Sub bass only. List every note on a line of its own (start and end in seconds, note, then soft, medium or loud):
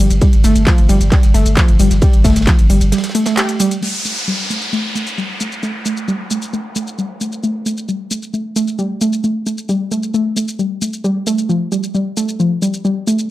0.10 0.21 G1 medium
0.33 0.44 G1 medium
0.44 0.55 G1 loud
0.56 0.67 G1 medium
0.78 0.89 G1 medium
0.89 1.00 G1 loud
1.01 1.12 G1 medium
1.23 1.34 G1 medium
1.34 1.45 G1 loud
1.46 1.57 G1 medium
1.68 1.79 G1 medium
1.79 1.90 G1 loud
1.91 2.02 G1 medium
2.13 2.24 G1 medium
2.25 2.35 G1 loud
2.36 2.47 G1 medium
2.59 2.69 G1 medium
2.70 2.81 G1 medium
2.81 2.92 G1 medium